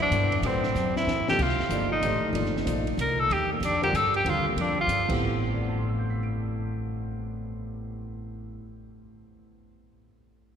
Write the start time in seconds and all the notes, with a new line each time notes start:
0.02 D4
0.11 G2 B2 F#3 E4 A4 C5, hi-hat pedal, ride
0.32 ride
0.42 A2 F#3 C4 E4 A4 B4, ride
0.46 C5
0.63 snare
0.75 F#2, snare, hi-hat pedal
0.96 E4, snare
1.06 E2, snare
1.28 C3 F3 A#3 D#4 G4 A4, snare
1.38 C2 F4, kick, crash
1.49 snare
1.57 muted upright bass stroke, snare
1.70 G1 F3 A#3 D#4 A4 D5, hi-hat pedal, ride
1.92 D#4
2.01 A1 D#3 A3 G4 C5 D5, hi-hat pedal, ride
2.22 muted upright bass stroke
2.33 G1 F3 A#3 D#4 A4 D5, ride
2.46 snare
2.57 snare
2.65 A#1 F3 A#3 D#4 A4 D5, hi-hat pedal, ride
2.87 ride
2.97 C2 A#4, hi-hat pedal, ride
3.20 A4
3.30 D#2 G4, ride
3.53 A#3
3.60 F2, hi-hat pedal, ride
3.65 D4
3.82 D3 G3 C4 F4 G4 A#4, ride
3.93 G2 A4, hi-hat pedal, ride
4.14 G4, ride
4.24 D#2 D3 G3 C4 F4 A#4, ride
4.29 F4
4.48 A#3
4.56 F2, ride
4.61 D4
4.81 F4
4.87 G2, hi-hat pedal, ride
5.08 A1 A2 A3 B3 C4 G4, kick, crash
5.53 D5
5.60 F#5
5.69 A5
5.78 C6
5.88 E6
5.99 G6
6.10 B6
6.23 D7